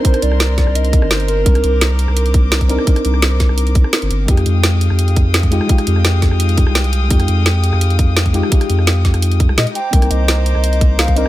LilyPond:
<<
  \new Staff \with { instrumentName = "String section" } { \time 4/4 \key c \minor \tempo 4 = 170 << { c'''1 | d'''1~ | d'''1 | <g'' ees'''>1~ |
<g'' ees'''>1~ | <g'' ees'''>1~ | <g'' ees'''>2.~ <g'' ees'''>8 <bes'' d'''>8~ | <bes'' d'''>1 | } \\ { <bes' c''>1~ | <bes' c''>1~ | <bes' c''>1 | <aes f''>1~ |
<aes f''>1~ | <aes f''>1~ | <aes f''>2.~ <aes f''>8 c''8~ | c''1 | } >> }
  \new Staff \with { instrumentName = "Soft synth lead" } { \time 4/4 \key c \minor c''8 d''4. ees''4 c''8 bes'8~ | bes'2~ bes'8 r4. | r1 | r1 |
r1 | r1 | r2. ees''8 g''8~ | g''8 ees''4. ees''4 f''8 ees''8 | }
  \new Staff \with { instrumentName = "FM electric piano" } { \time 4/4 \key c \minor <c' d' ees' bes'>2~ <c' d' ees' bes'>8 <c' d' ees' bes'>8 r4 | <c' d' ees' bes'>2.~ <c' d' ees' bes'>8 <c' d' ees' bes'>8 | <c' d' ees' bes'>2~ <c' d' ees' bes'>8 r4. | <aes ees' f' g'>2.~ <aes ees' f' g'>8 <aes ees' f' g'>8 |
<aes ees' f' g'>2~ <aes ees' f' g'>8 <aes ees' f' g'>8 r4 | <aes ees' f' g'>2.~ <aes ees' f' g'>8 <aes ees' f' g'>8 | <aes ees' f' g'>2~ <aes ees' f' g'>8 r4. | <bes c' ees' bes'>2.~ <bes c' ees' bes'>8 <c' d' ees' bes'>8 | }
  \new Staff \with { instrumentName = "Sub bass" } { \clef bass \time 4/4 \key c \minor r8 c,4~ c,16 c,4 g,,4~ g,,16 | c,8 c,4~ c,16 c,2 r16 | r8 c,4~ c,16 c,4 r8 g,,16 g,,8 | f,8 f,4~ f,16 f,2 r16 |
r8 f,4~ f,16 f,4 c,4~ c,16 | f,8 f,4~ f,16 f,2 r16 | r8 f,4~ f,16 f,4 c,16 bes,16 r8. | c,8 c,4~ c,16 c,2 r16 | }
  \new DrumStaff \with { instrumentName = "Drums" } \drummode { \time 4/4 <hh bd>16 <hh ss>16 hh16 ss16 <hh sn>8 <hh bd sn>16 ss16 hh16 hh16 <hh bd>16 ss16 <hh sn>16 hh16 hh8 | <hh bd>16 <hh ss>16 hh8 <hh sn>8 hh16 ss16 hh16 hh16 <hh bd>8 <hh sn>16 <hh bd>16 hh16 ss16 | <hh bd>16 <hh ss>16 hh16 ss16 <hh sn>8 <hh bd sn>16 ss16 hh16 hh16 <hh bd>16 ss16 <hh sn>16 hh16 hh8 | <hh bd>16 <hh ss>16 hh8 <hh sn>8 hh16 ss16 hh16 hh16 <hh bd>8 <hh sn>16 <hh bd>16 hh16 ss16 |
<hh bd>16 <hh ss>16 hh16 ss16 <hh sn>8 <hh bd sn>16 ss16 hh16 hh16 <hh bd>16 ss16 <hh sn>16 hh16 hh8 | <hh bd>16 <hh ss>16 hh8 <hh sn>8 hh16 ss16 hh16 hh16 <hh bd>8 <hh sn>16 <hh bd>16 hh16 ss16 | <hh bd>16 <hh ss>16 hh16 ss16 <hh sn>8 <hh bd sn>16 <hh ss>16 hh16 hh16 <hh bd>16 ss16 <hh sn>16 hh16 hh8 | <hh bd>16 <hh ss>16 hh8 <hh sn>8 hh16 ss16 hh16 hh16 <hh bd>8 <hh sn>16 <hh bd>16 hh8 | }
>>